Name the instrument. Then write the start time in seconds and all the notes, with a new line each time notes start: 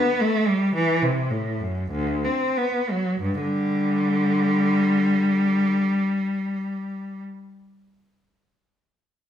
cello
Already playing: B3
0.20 A3
0.47 G3
0.74 E3
1.02 C3
1.31 A2
1.60 F#2
1.91 D2
2.24 C4
2.57 B3
2.90 F#3
3.20 G2
3.41 D3 G3